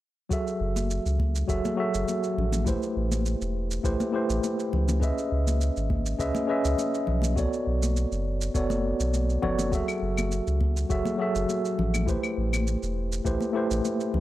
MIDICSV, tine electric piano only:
0, 0, Header, 1, 2, 480
1, 0, Start_track
1, 0, Key_signature, 3, "minor"
1, 0, Tempo, 588235
1, 257, Time_signature, 4, 2, 24, 8
1, 11589, End_track
2, 0, Start_track
2, 0, Title_t, "Tine electric piano"
2, 0, Program_c, 0, 4
2, 240, Note_on_c, 0, 54, 68
2, 248, Note_on_c, 0, 66, 59
2, 257, Note_on_c, 0, 68, 62
2, 263, Note_on_c, 0, 69, 60
2, 271, Note_on_c, 0, 76, 75
2, 425, Control_c, 0, 64, 127
2, 1181, Note_off_c, 0, 54, 0
2, 1185, Note_off_c, 0, 66, 0
2, 1190, Note_off_c, 0, 68, 0
2, 1193, Note_off_c, 0, 69, 0
2, 1197, Note_off_c, 0, 76, 0
2, 1204, Note_on_c, 0, 54, 72
2, 1210, Note_on_c, 0, 66, 62
2, 1213, Note_on_c, 0, 68, 62
2, 1215, Note_on_c, 0, 69, 65
2, 1221, Note_on_c, 0, 76, 77
2, 1424, Note_off_c, 0, 54, 0
2, 1427, Note_off_c, 0, 66, 0
2, 1428, Note_off_c, 0, 68, 0
2, 1429, Note_off_c, 0, 69, 0
2, 1432, Note_off_c, 0, 76, 0
2, 1439, Note_on_c, 0, 54, 71
2, 1445, Note_on_c, 0, 66, 65
2, 1454, Note_on_c, 0, 68, 61
2, 1462, Note_on_c, 0, 69, 63
2, 1469, Note_on_c, 0, 76, 77
2, 2141, Note_off_c, 0, 54, 0
2, 2144, Note_off_c, 0, 66, 0
2, 2148, Note_off_c, 0, 68, 0
2, 2152, Note_off_c, 0, 69, 0
2, 2156, Note_off_c, 0, 76, 0
2, 2159, Note_on_c, 0, 57, 70
2, 2168, Note_on_c, 0, 64, 63
2, 2176, Note_on_c, 0, 67, 60
2, 2182, Note_on_c, 0, 71, 62
2, 2187, Control_c, 0, 64, 0
2, 2189, Note_on_c, 0, 72, 75
2, 2347, Control_c, 0, 64, 127
2, 3101, Note_off_c, 0, 57, 0
2, 3106, Note_off_c, 0, 64, 0
2, 3109, Note_off_c, 0, 67, 0
2, 3113, Note_off_c, 0, 71, 0
2, 3116, Note_off_c, 0, 72, 0
2, 3129, Note_on_c, 0, 57, 73
2, 3134, Note_on_c, 0, 64, 63
2, 3138, Note_on_c, 0, 67, 69
2, 3140, Note_on_c, 0, 71, 66
2, 3145, Note_on_c, 0, 72, 83
2, 3346, Note_off_c, 0, 57, 0
2, 3348, Note_off_c, 0, 64, 0
2, 3351, Note_off_c, 0, 67, 0
2, 3352, Note_off_c, 0, 71, 0
2, 3354, Note_off_c, 0, 72, 0
2, 3363, Note_on_c, 0, 57, 71
2, 3370, Note_on_c, 0, 64, 64
2, 3376, Note_on_c, 0, 67, 63
2, 3384, Note_on_c, 0, 71, 60
2, 3393, Note_on_c, 0, 72, 78
2, 4063, Note_off_c, 0, 57, 0
2, 4066, Note_off_c, 0, 64, 0
2, 4069, Note_off_c, 0, 67, 0
2, 4074, Note_off_c, 0, 71, 0
2, 4078, Note_off_c, 0, 72, 0
2, 4079, Note_on_c, 0, 61, 66
2, 4088, Note_on_c, 0, 68, 62
2, 4094, Note_on_c, 0, 71, 61
2, 4101, Note_on_c, 0, 75, 66
2, 4108, Control_c, 0, 64, 0
2, 4109, Note_on_c, 0, 76, 76
2, 4256, Control_c, 0, 64, 127
2, 5021, Note_off_c, 0, 61, 0
2, 5025, Note_off_c, 0, 68, 0
2, 5029, Note_off_c, 0, 71, 0
2, 5032, Note_off_c, 0, 75, 0
2, 5036, Note_off_c, 0, 76, 0
2, 5048, Note_on_c, 0, 61, 70
2, 5053, Note_on_c, 0, 68, 65
2, 5055, Note_on_c, 0, 71, 67
2, 5061, Note_on_c, 0, 75, 68
2, 5063, Note_on_c, 0, 76, 79
2, 5265, Note_off_c, 0, 61, 0
2, 5268, Note_off_c, 0, 68, 0
2, 5269, Note_off_c, 0, 71, 0
2, 5272, Note_off_c, 0, 75, 0
2, 5273, Note_off_c, 0, 76, 0
2, 5280, Note_on_c, 0, 61, 74
2, 5288, Note_on_c, 0, 68, 66
2, 5296, Note_on_c, 0, 71, 67
2, 5303, Note_on_c, 0, 75, 66
2, 5312, Note_on_c, 0, 76, 80
2, 5982, Note_off_c, 0, 61, 0
2, 5985, Note_off_c, 0, 68, 0
2, 5990, Note_off_c, 0, 71, 0
2, 5993, Note_off_c, 0, 75, 0
2, 5997, Note_off_c, 0, 76, 0
2, 6002, Note_on_c, 0, 59, 67
2, 6008, Note_on_c, 0, 66, 62
2, 6017, Note_on_c, 0, 69, 63
2, 6023, Note_on_c, 0, 73, 62
2, 6028, Control_c, 0, 64, 0
2, 6033, Note_on_c, 0, 74, 74
2, 6156, Control_c, 0, 64, 127
2, 6943, Note_off_c, 0, 59, 0
2, 6945, Note_off_c, 0, 66, 0
2, 6950, Note_off_c, 0, 69, 0
2, 6953, Note_off_c, 0, 73, 0
2, 6958, Note_off_c, 0, 74, 0
2, 6971, Note_on_c, 0, 59, 74
2, 6974, Note_on_c, 0, 66, 63
2, 6978, Note_on_c, 0, 69, 64
2, 6981, Note_on_c, 0, 73, 65
2, 6986, Note_on_c, 0, 74, 77
2, 7187, Note_off_c, 0, 59, 0
2, 7189, Note_off_c, 0, 66, 0
2, 7191, Note_off_c, 0, 69, 0
2, 7192, Note_off_c, 0, 73, 0
2, 7194, Note_off_c, 0, 74, 0
2, 7688, Note_on_c, 0, 59, 83
2, 7691, Note_on_c, 0, 66, 77
2, 7694, Note_on_c, 0, 69, 74
2, 7699, Note_on_c, 0, 73, 76
2, 7702, Note_on_c, 0, 74, 92
2, 7905, Note_off_c, 0, 59, 0
2, 7907, Note_off_c, 0, 66, 0
2, 7908, Note_off_c, 0, 69, 0
2, 7911, Note_off_c, 0, 73, 0
2, 7912, Note_off_c, 0, 74, 0
2, 7925, Note_on_c, 0, 54, 66
2, 7930, Note_on_c, 0, 66, 65
2, 7939, Note_on_c, 0, 68, 62
2, 7946, Note_on_c, 0, 69, 66
2, 7948, Control_c, 0, 64, 0
2, 7955, Note_on_c, 0, 76, 75
2, 8087, Control_c, 0, 64, 127
2, 8864, Note_off_c, 0, 54, 0
2, 8867, Note_off_c, 0, 66, 0
2, 8871, Note_off_c, 0, 68, 0
2, 8875, Note_off_c, 0, 69, 0
2, 8879, Note_off_c, 0, 76, 0
2, 8891, Note_on_c, 0, 54, 70
2, 8894, Note_on_c, 0, 66, 70
2, 8898, Note_on_c, 0, 68, 65
2, 8903, Note_on_c, 0, 69, 63
2, 8905, Note_on_c, 0, 76, 82
2, 9107, Note_off_c, 0, 54, 0
2, 9109, Note_off_c, 0, 66, 0
2, 9110, Note_off_c, 0, 68, 0
2, 9113, Note_off_c, 0, 69, 0
2, 9114, Note_off_c, 0, 76, 0
2, 9121, Note_on_c, 0, 54, 67
2, 9131, Note_on_c, 0, 66, 61
2, 9136, Note_on_c, 0, 68, 65
2, 9144, Note_on_c, 0, 69, 66
2, 9152, Note_on_c, 0, 76, 78
2, 9822, Note_off_c, 0, 54, 0
2, 9827, Note_off_c, 0, 66, 0
2, 9830, Note_off_c, 0, 68, 0
2, 9834, Note_off_c, 0, 69, 0
2, 9838, Note_off_c, 0, 76, 0
2, 9840, Note_on_c, 0, 57, 67
2, 9847, Note_on_c, 0, 64, 65
2, 9855, Note_on_c, 0, 67, 65
2, 9861, Note_on_c, 0, 71, 64
2, 9868, Control_c, 0, 64, 0
2, 9869, Note_on_c, 0, 72, 75
2, 10020, Control_c, 0, 64, 127
2, 10781, Note_off_c, 0, 57, 0
2, 10785, Note_off_c, 0, 64, 0
2, 10789, Note_off_c, 0, 67, 0
2, 10792, Note_off_c, 0, 71, 0
2, 10796, Note_off_c, 0, 72, 0
2, 10809, Note_on_c, 0, 57, 72
2, 10813, Note_on_c, 0, 64, 65
2, 10817, Note_on_c, 0, 67, 68
2, 10820, Note_on_c, 0, 71, 68
2, 10824, Note_on_c, 0, 72, 83
2, 11026, Note_off_c, 0, 57, 0
2, 11028, Note_off_c, 0, 64, 0
2, 11030, Note_off_c, 0, 67, 0
2, 11032, Note_off_c, 0, 71, 0
2, 11034, Note_off_c, 0, 72, 0
2, 11042, Note_on_c, 0, 57, 76
2, 11049, Note_on_c, 0, 64, 62
2, 11057, Note_on_c, 0, 67, 67
2, 11064, Note_on_c, 0, 71, 64
2, 11072, Note_on_c, 0, 72, 77
2, 11589, Note_off_c, 0, 57, 0
2, 11589, Note_off_c, 0, 64, 0
2, 11589, Note_off_c, 0, 67, 0
2, 11589, Note_off_c, 0, 71, 0
2, 11589, Note_off_c, 0, 72, 0
2, 11589, End_track
0, 0, End_of_file